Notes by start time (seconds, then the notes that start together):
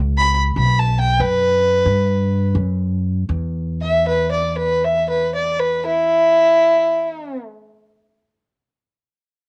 Already playing: C#2
0.18 B5
0.56 B1 B5
0.79 A5
1.00 G5
1.20 F#2 B4
1.85 G2
2.55 F#2
3.29 E2
3.82 E5
4.07 B4
4.32 D5
4.58 B4
4.84 E5
5.10 B4
5.35 D5
5.60 B4
5.86 E4